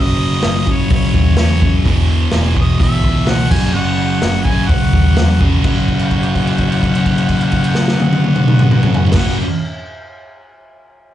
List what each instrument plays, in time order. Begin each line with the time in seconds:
Already playing: picked electric bass F#1, distorted electric guitar F#2 C#3 F#3
0.02 harmonica D#5
0.43 picked electric bass F#1, distorted electric guitar F#2 C#3 F#3, snare, open hi-hat
0.66 distorted electric guitar F#2 C#3 F#3, kick
0.72 harmonica C#5
0.90 picked electric bass C#2, distorted electric guitar F#2 C#3 F#3, harmonica C#5, kick, open hi-hat
1.14 picked electric bass D#2, kick
1.37 picked electric bass E2, distorted electric guitar F#2 C#3 F#3, harmonica C#5, snare, open hi-hat
1.62 distorted electric guitar F#2 C#3 F#3, kick
1.85 picked electric bass E1, distorted electric guitar E2 B2 E3, kick, open hi-hat
2.32 picked electric bass E1, distorted electric guitar E2 B2 E3, snare, open hi-hat
2.55 distorted electric guitar E2 B2 E3, kick
2.61 harmonica D#5
2.79 picked electric bass B1, distorted electric guitar E2 B2 E3, kick, open hi-hat
2.83 harmonica E5
3.04 picked electric bass C#2, kick
3.27 picked electric bass C#2, distorted electric guitar E2 B2 E3, harmonica F#5, snare, open hi-hat
3.51 picked electric bass F#1, distorted electric guitar F#2 C#3 F#3, harmonica G#5, kick, crash
3.74 picked electric bass F#1, distorted electric guitar F#2 C#3 F#3, harmonica F#5
4.22 picked electric bass F#1, distorted electric guitar F#2 C#3 F#3, snare, open hi-hat
4.45 distorted electric guitar F#2 C#3 F#3, harmonica G#5, kick
4.68 picked electric bass C#2, distorted electric guitar F#2 C#3 F#3, harmonica F#5, kick, open hi-hat
4.93 picked electric bass D#2, kick
5.17 picked electric bass E2, distorted electric guitar F#2 C#3 F#3, snare, open hi-hat
5.41 distorted electric guitar F#2 C#3 F#3, kick
5.64 picked electric bass F#1, distorted electric guitar F#2 C#3, harmonica F#5, kick, crash
5.68 distorted electric guitar F#3
5.88 kick, crash
5.99 crash
6.11 kick, crash
6.23 crash
6.35 kick, crash
6.47 crash
6.58 kick, crash
6.72 crash
6.83 kick, crash
6.95 crash
7.06 kick, crash
7.18 crash
7.29 kick, crash
7.41 crash
7.51 kick, crash
7.64 crash
7.75 snare
7.88 snare
8.00 high tom
8.13 high tom
8.24 high tom
8.36 mid tom
8.48 mid tom
8.59 mid tom
8.71 mid tom
8.83 mid tom
8.94 floor tom
9.07 floor tom
9.12 picked electric bass F#1, harmonica F#5, kick, snare, crash
9.16 distorted electric guitar F#2 C#3 F#3